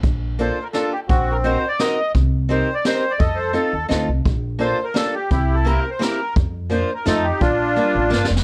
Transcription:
<<
  \new Staff \with { instrumentName = "Accordion" } { \time 3/4 \key bes \major \tempo 4 = 171 << { r4 \tuplet 3/2 { c''4 bes'8 } a'8 g'8 | \tuplet 3/2 { ges'4 bes'8 c''4 d''8 } ees''4 | r4 \tuplet 3/2 { c''4 d''8 } c''8. d''16 | ees''8 c''8 a'4 r4 |
r4 \tuplet 3/2 { c''4 bes'8 } a'8 g'8 | \tuplet 3/2 { g'4 a'8 bes'4 c''8 } bes'4 | r4 \tuplet 3/2 { c''4 bes'8 } a'8 g'8 | f'2~ f'8 r8 | } \\ { r2. | c'4. r4. | r2. | a'4. r4. |
r2. | e'4. r4. | r2 ees'4 | d'2~ d'8 r8 | } >> }
  \new Staff \with { instrumentName = "Steel-string acoustic guitar" } { \time 3/4 \key bes \major r4 <bes d' f' a'>8 r8 <bes d' f' a'>8 r8 | r4 <c' ees' ges' bes'>8 r8 <c' ees' ges' bes'>8 r8 | r4 <c' ees' g' bes'>8 r8 <c' ees' g' bes'>8 r8 | r4 <c' ees' f' a'>8 r8 <c' ees' f' a'>8 r8 |
r4 <bes d' f' a'>8 r8 <bes d' f' a'>8 r8 | r4 <bes c' e' g'>8 r8 <bes c' e' g'>8 r8 | r4 <f bes d' f'>8 r8 <a c' ees' f'>8 r8 | r4 <g bes d' f'>8 r8 <g bes d' f'>8 r8 | }
  \new Staff \with { instrumentName = "Upright bass" } { \clef bass \time 3/4 \key bes \major bes,,2 r4 | bes,,2 r4 | c,2 r4 | f,4. ees,8 d,8 c,8 |
bes,,2 r4 | c,2 r4 | f,2 f,4 | bes,,4. a,,8 g,,8 f,,8 | }
  \new DrumStaff \with { instrumentName = "Drums" } \drummode { \time 3/4 <hh bd>4 hh4 <hh sn>4 | <hh bd>4 hh4 <hh sn>4 | <hh bd>4 hh4 <hh sn>4 | <hh bd>4 hh4 <hh sn>4 |
<hh bd>4 hh4 <hh sn>4 | <hh bd>4 hh4 <hh sn>4 | <hh bd>4 hh4 <hh sn>4 | <hh bd>4 hh4 \tuplet 3/2 { sn8 sn8 sn8 } | }
>>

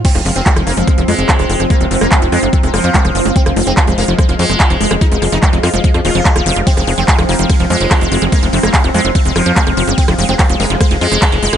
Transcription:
<<
  \new Staff \with { instrumentName = "Synth arpeggio sound" } { \clef bass \time 4/4 \key f \minor \tempo 4 = 145 f16 aes16 aes16 f16 aes16 aes16 f16 aes16 aes16 f16 aes16 aes16 f16 aes16 aes16 f16 | aes16 aes16 f16 aes16 aes16 f16 aes16 aes16 f16 aes16 aes16 f16 aes16 aes16 f16 aes16 | aes16 f16 aes16 aes16 f16 aes16 aes16 f16 aes16 aes16 f16 aes16 aes16 f16 aes16 aes16 | f16 aes16 aes16 f16 aes16 aes16 f16 aes16 aes16 f16 ees16 f16 f16 f16 ees16 f16 |
f16 aes16 aes16 f16 aes16 aes16 f16 aes16 aes16 f16 aes16 aes16 f16 aes16 aes16 f16 | aes16 aes16 f16 aes16 aes16 f16 aes16 aes16 f16 aes16 aes16 f16 aes16 aes16 f16 aes16 | aes16 f16 aes16 aes16 f16 aes16 aes16 f16 aes16 aes16 f16 aes16 aes16 f16 aes16 aes16 | }
  \new Staff \with { instrumentName = "Synth texture" } { \clef bass \time 4/4 \key f \minor <f c'>1~ | <f c'>1 | aes1~ | aes1 |
c'1~ | c'1 | aes1 | }
  \new Staff \with { instrumentName = "Sitar" } { \clef bass \time 4/4 \key f \minor c'16 f16 f16 c'16 f16 f16 bes16 f16 r16 f16 aes4~ aes16 r16 | bes16 c16 c16 bes16 c16 c16 aes16 c16 c16 c16 f4~ f16 r16 | c'16 f16 f16 c'16 f16 f16 bes16 f16 f16 f16 aes4~ aes16 r16 | ees'16 f16 f16 ees'16 f16 f16 f'16 f16 f16 f16 f'4~ f'16 r16 |
c'16 f16 f16 c'16 f16 f16 bes16 f16 f16 f16 aes4~ aes16 r16 | bes16 c16 c16 bes16 c16 c16 aes16 c16 c16 c16 f4~ f16 r16 | c'16 f16 f16 c'16 f16 f16 bes16 f16 f16 f16 aes4~ aes16 r16 | }
  \new Staff \with { instrumentName = "Analog synth bass" } { \clef bass \time 4/4 \key f \minor r16 f,,16 f,,16 f,,16 r16 f,,16 f,,16 f,,16 r16 f,,16 f,16 f,,16 r16 f,,16 f,,16 f,,16 | r16 f,,16 f,,16 f,,16 r16 f,,16 f,16 f,,16 r16 f,,16 f,,16 f,16 r16 f,,16 f,,16 ges,,16 | r16 f,,16 f,,16 f,,16 r16 f,,16 f,,16 f,,16 r16 f,,16 f,16 f,,16 r16 f,,16 f,,16 f,,16 | r16 f,,16 f,,16 f,,16 r16 f,,16 f,16 f,,16 r16 f,16 ees,,16 f,,16 r16 ees,,16 f,,16 f,,16 |
r16 f,,16 f,,16 f,,16 r16 f,,16 f,,16 f,,16 r16 f,,16 f,16 f,,16 r16 f,,16 f,,16 f,,16 | r16 f,,16 f,,16 f,,16 r16 f,,16 f,16 f,,16 r16 f,,16 f,,16 f,16 r16 f,,16 f,,16 ges,,16 | r16 f,,16 f,,16 f,,16 r16 f,,16 f,,16 f,,16 r16 f,,16 f,16 f,,16 r16 f,,16 f,,16 f,,16 | }
  \new DrumStaff \with { instrumentName = "Drums" } \drummode { \time 4/4 <cymc hh bd>16 <hh ss>16 hho16 hh16 <hc hh bd>16 <hh ss>16 hho16 hh16 <hh bd ss>16 hh16 hho16 hh16 <hc hh bd ss>16 hh16 hho16 <hh ss>16 | <hh bd>16 hh16 hho16 <hh ss>16 <hc hh bd>16 hh16 <hho ss>16 hh16 <hh bd>16 hh16 <hho ss>16 hh16 <hc hh bd>16 <hh ss>16 hho16 hh16 | <hh bd>16 <hh ss>16 hho16 hh16 <hc hh bd ss>16 hh16 hho16 hh16 <hh bd ss>16 hh16 hho16 <hh ss>16 <hc hh bd>16 hh16 hho16 ss16 | <hh bd>16 hh16 <hho ss>16 hh16 <hc hh bd>16 hh16 <hho ss>16 hh16 <hh bd>16 <hh ss>16 hho16 hh16 <hc hh bd>16 <hh ss>16 hho16 hh16 |
<hh bd cymr>16 <hh ss>16 hho16 hh16 <hc hh bd cymr>16 <hh ss>16 hho8 <hh bd cymr ss>16 hh16 hho8 <hc hh bd cymr ss>16 hh16 hho16 <hh ss>16 | <hh bd cymr>16 hh16 hho16 <hh ss>16 <hc hh bd cymr>16 hh16 <hho ss>16 hh16 <hh bd cymr>16 hh16 <hho ss>16 hh16 <hc hh bd cymr>16 <hh ss>16 hho16 hh16 | <hh bd cymr>16 <hh ss>16 hho16 hh16 <hc hh bd cymr ss>16 hh16 hho16 hh16 <hh bd cymr ss>16 hh16 hho16 <hh ss>16 <hc hh bd cymr>16 hh16 hho16 <hh ss>16 | }
>>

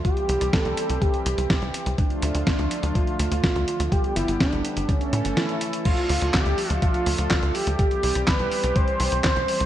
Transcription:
<<
  \new Staff \with { instrumentName = "Analog synth lead" } { \time 4/4 \key d \dorian \tempo 4 = 124 g'4 a'4 g'4. r8 | d'2 f'2 | g'8 e'8 d'4 cis'4 e'4 | f'4 g'4 f'4. g'8~ |
g'4 b'4 c''4 c''4 | }
  \new Staff \with { instrumentName = "Analog synth pad" } { \time 4/4 \key d \dorian << { <g c' g'>1 | <f a f'>1 | <g b g'>2 <a cis' a'>2 | <a d' a'>1 |
<g c' g'>1 | } \\ { e1 | d1~ | d2 e2 | f1 |
e1 | } >> }
  \new Staff \with { instrumentName = "Analog synth bass" } { \clef bass \time 4/4 \key d \dorian r8 c,16 c,16 r16 c,16 r16 c,16 r8 c,16 c,16 r16 c,16 r16 c,16 | r8 d,16 d,16 r16 d,16 r16 d,16 r8 d,16 d,16 r16 d,16 r16 d,16 | r8 g,,16 g,,16 r16 g,,16 r16 g,,16 r8 a,16 g,,16 r4 | r8 d,16 d,16 r16 d,16 r16 d,16 r8 d,16 d,16 r16 d,16 r16 d,16 |
r8 c,16 c,16 r16 c,16 r16 c,16 r8 c,16 c,16 r16 c,16 r16 c,16 | }
  \new DrumStaff \with { instrumentName = "Drums" } \drummode { \time 4/4 <hh bd>16 hh16 hh16 hh16 <hh bd sn>16 hh16 hh16 hh16 <hh bd>16 hh16 hh16 hh16 <hh bd sn>16 hh16 hh16 hh16 | <hh bd>16 hh16 hh16 hh16 <hh bd sn>16 hh16 hh16 hh16 <hh bd>16 hh16 hh16 hh16 <hh bd sn>16 hh16 hh16 hh16 | <hh bd>16 hh16 hh16 hh16 <hh bd sn>16 hh16 hh16 hh16 <hh bd>16 hh16 hh16 hh16 <hh sn>16 hh16 hh16 hh16 | <cymc hh bd>16 hh16 hho16 hh16 <hc hh bd sn>16 hh16 hho16 hh16 <hh bd>16 hh16 hho16 hh16 <hc hh bd sn>16 hh16 hho16 hh16 |
<hh bd>16 hh16 hho16 hh16 <hc hh bd sn>16 hh16 hho16 hh16 <hh bd>16 hh16 hho16 hh16 <hc hh bd sn>16 hh16 hho16 hh16 | }
>>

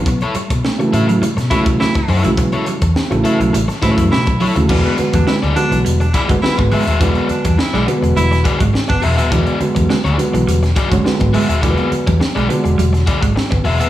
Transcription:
<<
  \new Staff \with { instrumentName = "Overdriven electric guitar" } { \time 4/4 \key e \mixolydian \tempo 4 = 104 r16 <e' a' cis''>16 r4 <e' a' e''>16 r8. <e' a' cis''>16 r8. <e' a' cis''>16 r16 | r16 <e' a' cis''>16 r4 <e' a' e''>16 r8. <e' a' cis''>16 r8. <e' a' cis''>16 r16 | <fis' gis' d''>8 r8. <fis' gis' d''>16 r4 <fis' gis' d''>16 r8. <fis' gis' e''>16 <fis' gis' e''>16 | <fis' gis' d''>8 r8. <fis' gis' d''>16 r4 <fis' gis' d''>16 r8. <fis' gis' e''>16 <fis' gis' e''>16 |
<fis' gis' d''>8 r8. <fis' gis' d''>16 r4 <fis' gis' d''>16 r8. <fis' gis' e''>16 <fis' gis' e''>16 | <fis' gis' d''>8 r8. <fis' gis' d''>16 r4 <fis' gis' d''>16 r8. <fis' gis' e''>16 <fis' gis' e''>16 | }
  \new Staff \with { instrumentName = "Baritone saxophone" } { \time 4/4 \key e \mixolydian r2 r8 e'16 r16 e'8. r16 | r2 r8 e'16 r16 e'8. r16 | r16 b16 r16 d'16 e'16 r16 d'8 r16 d'16 e'16 r16 e'8 r8 | r8 d'16 d'16 e'8 r8 e'8 r8. d'8 r16 |
r1 | r1 | }
  \new Staff \with { instrumentName = "Clean electric guitar" } { \clef bass \time 4/4 \key e \mixolydian b16 r16 g16 r16 a16 r8 fis16 g16 r8 g16 a16 r8 a16 | b16 r16 g16 r8 a16 r16 fis16 g16 r8 g16 r8 fis16 r16 | e16 r8 g16 gis16 r8 e16 g16 r8 gis16 r8 gis16 r16 | e16 r8 g16 r16 gis16 b16 r16 g16 r8 gis16 r16 b16 r16 b16 |
e16 r8 g16 gis16 r8 e16 g16 r8 gis16 r8 gis16 r16 | e16 r8 g16 r16 gis16 b16 r16 g16 r8 gis16 r16 b16 r16 b16 | }
  \new Staff \with { instrumentName = "Upright piano" } { \clef bass \time 4/4 \key e \mixolydian r4 r16 <cis e fis a>8. r8 <cis e fis a>8. r8 <cis e fis gis>16~ | <cis e fis gis>8. r8 <cis e fis a>8. r8 <cis e fis a>8. r8 <cis e fis a>16 | <d fis gis b>16 r16 <d fis gis b>8 r8 <d fis gis b>8. r8 <d fis gis b>16 <d fis gis b>8 r8 | <d fis gis b>4 r8 <d fis gis b>4~ <d fis gis b>16 r4 r16 |
<d fis gis b>16 r16 <d fis gis b>8 r8 <d fis gis b>8. r8 <d fis gis cis'>16 <d fis gis b>8 r8 | <d fis gis ais b>4 r8 <d fis gis d'>4~ <d fis gis d'>16 r4 r16 | }
  \new Staff \with { instrumentName = "Fingered electric bass" } { \clef bass \time 4/4 \key e \mixolydian b,,16 r8 b,16 r8 a,8 r16 b,16 r16 b,,16 r8 fis,16 ais,,16 | b,,16 r8 e,16 r16 a,,16 r16 b,,16 a,,16 r16 a,16 fis,16 b,16 b,,16 r16 dis,16 | e,,16 r8 e,16 r16 d,16 r16 b,,16 e,,8 r16 g,,16 r16 gis,,16 r16 dis,,16 | e,,16 r8 e,16 r16 b,,16 r16 e,,16 e,,8 r16 gis,,16 r16 g,,16 e,,16 dis,,16 |
e,,16 r8 e,16 r16 d,16 r16 b,,16 e,,8 r16 g,,16 r16 gis,,16 r16 dis,,16 | e,,16 r8 e,16 r16 b,,16 r16 e,,16 e,,8 r16 gis,,16 r16 g,,16 e,,16 dis,,16 | }
  \new DrumStaff \with { instrumentName = "Drums" } \drummode { \time 4/4 <hh bd>16 hh16 hh16 <hh bd>16 sn16 hh16 hh16 hh16 hh16 <hh sn>16 <hh bd>16 <hh bd>16 sn16 <hh bd>16 hho16 hh16 | <hh bd>16 hh16 hh16 <hh bd>16 sn16 hh16 hh16 hh16 hh16 <hh sn>16 <hh bd>16 <hh bd>16 sn16 <hh bd>16 hho16 hh16 | <cymc bd>16 hh16 hh16 <hh bd>16 sn16 hh16 hh16 hh16 hh16 hh16 <hh bd>16 <hh bd>16 sn16 <hh bd>16 hho16 hh16 | <hh bd>16 hh16 hh16 <hh bd>16 sn16 hh16 hh16 hh16 hh16 <hh sn>16 <hh bd>16 <hh bd>16 sn16 <hh bd>16 hho16 hh16 |
<hh bd>16 hh16 hh16 <hh bd>16 sn16 hh16 hh16 hh16 hh16 <hh sn>16 <hh bd>16 <hh bd>16 sn16 <hh bd>16 hho16 hh16 | <hh bd>16 hh16 hh16 <hh bd>16 sn16 hh16 hh16 hh16 hh16 <hh sn>16 <hh bd>16 <hh bd>16 sn16 <hh bd>16 hho16 hh16 | }
>>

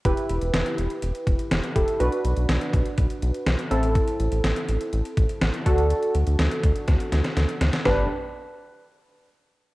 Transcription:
<<
  \new Staff \with { instrumentName = "Synth keys" } { \time 4/4 \key g \major \tempo 4 = 123 <e' g' b'>2.~ <e' g' b'>8 <e' g' a'>8 | <d' fis' b'>2.~ <d' fis' b'>8 <c' e' a'>8~ | <c' e' a'>2.~ <c' e' a'>8 <d' fis' a'>8~ | <d' fis' a'>2.~ <d' fis' a'>8 r8 |
<d' g' b'>8 r2. r8 | }
  \new Staff \with { instrumentName = "Analog synth bass" } { \clef bass \time 4/4 \key g \major e,,16 r16 e,,16 e,,16 e,,16 r16 e,,16 r16 e,,16 r16 e,,16 r16 e,,16 r16 e,,16 r16 | b,,16 r16 b,,16 b,,16 b,,16 r16 b,,16 r16 b,,16 r16 b,,16 r16 b,,16 r16 a,,8~ | a,,16 r16 a,,16 a,,16 a,,16 r16 a,,16 r16 a,,16 r16 a,,16 r16 a,,16 r16 d,8~ | d,16 r16 d,16 d,16 d,16 r16 d,16 r16 d,16 r16 d,16 r16 d,16 r16 d,16 r16 |
g,,8 r2. r8 | }
  \new DrumStaff \with { instrumentName = "Drums" } \drummode { \time 4/4 <hh bd>16 hh16 hh16 hh16 <hh sn>16 hh16 hh16 hh16 hh16 hh16 <hh bd>16 hh16 <hh sn>16 hh16 <hh bd>16 hh16 | hh16 hh16 hh16 hh16 <hh sn>16 hh16 <hh bd>16 hh16 <hh bd>16 hh16 hh16 hh16 <hh sn>16 hh16 hh16 hh16 | <hh bd>16 hh16 hh16 hh16 <hh sn>16 hh16 hh16 hh16 hh16 hh16 <hh bd>16 hh16 <hh sn>16 hh16 <hh bd>16 hh16 | hh16 hh16 hh16 hh16 <hh sn>16 hh16 <hh bd>16 hh16 <hh bd sn>16 hh16 <hh sn>16 <hh sn>16 <hh sn>16 hh16 <hh sn>16 <hh sn>16 |
<sn tomfh>4 r4 r4 r4 | }
>>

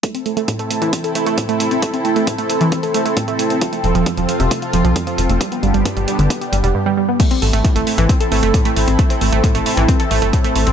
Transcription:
<<
  \new Staff \with { instrumentName = "Analog synth pad" } { \time 4/4 \key a \minor \tempo 4 = 134 << { <c' a'>1~ | <c' a'>1~ | <c' a'>1 | <b g'>2. r4 |
<c' a'>1~ | <c' a'>1 | } \\ { e'1~ | e'1 | f'1 | d'2. r4 |
e'1~ | e'1 | } >> }
  \new Staff \with { instrumentName = "Synth pluck" } { \time 4/4 \key a \minor a16 c'16 a16 a16 a,16 a16 a16 e16 c'16 a'16 a16 a16 a,16 a16 a16 c'16 | a16 c'16 a16 a16 a,16 a16 a16 e16 c'16 a'16 a16 a16 a,16 a16 a16 c'16 | f16 a16 f16 f16 f,16 f16 f16 c16 a16 f'16 f16 f16 f,16 f16 f16 a16 | g16 b16 g16 g16 g,16 g16 g16 d16 b16 g'16 g16 g16 g,16 g16 g16 b16 |
a16 c'16 a16 a16 a,16 a16 a16 e16 c'16 a'16 a16 a16 a,16 a16 a16 c'16 | a16 c'16 a16 a16 a,16 a16 a16 e16 c'16 a'16 a16 a16 a,16 a16 a16 c'16 | }
  \new Staff \with { instrumentName = "Analog synth bass" } { \clef bass \time 4/4 \key a \minor r1 | r1 | r8 f,,16 f,,16 r16 f,,16 r16 f,,16 r8 f,,16 c,16 r8 f,,16 f,,16 | r8 g,,16 g,,16 r16 g,,16 r16 g,,16 r8 g,,16 f,,16 r4 |
r8 a,,16 a,,16 r16 a,,16 r16 a,,16 r8 a,,16 g,,16 r8 a,,16 a,,16 | r8 a,,16 a,,16 r16 a,,16 r16 a,,16 r8 a,,16 g,,16 r8 a,,16 a,,16 | }
  \new DrumStaff \with { instrumentName = "Drums" } \drummode { \time 4/4 <hh bd>16 hh16 hh16 hh16 <hh bd>16 hh16 hh16 hh16 <hh bd>16 hh16 hh16 hh16 <hh bd>16 hh16 hh16 hh16 | <hh bd>16 hh16 hh16 hh16 <hh bd>16 hh16 hh16 hh16 <hh bd>16 hh16 hh16 hh16 <hh bd>16 hh16 hh16 hh16 | <hh bd>16 hh16 hh16 hh16 <hh bd>16 hh16 hh16 hh16 <hh bd>16 hh16 hh16 hh16 <hh bd>16 hh16 hh16 hh16 | <hh bd>16 hh16 hh16 hh16 <hh bd>16 hh16 hh16 hh16 <hh bd>16 hh16 hh16 hh16 r4 |
<cymc hh bd>16 hh16 hho16 hh16 <hh bd>16 hh16 hho16 hh16 <hh bd>16 hh16 hho16 hh16 <hh bd>16 hh16 hho16 hh16 | <hh bd>16 hh16 hho16 hh16 <hh bd>16 hh16 hho16 hh16 <hh bd>16 hh16 hho16 hh16 <hh bd>16 hh16 hho16 hh16 | }
>>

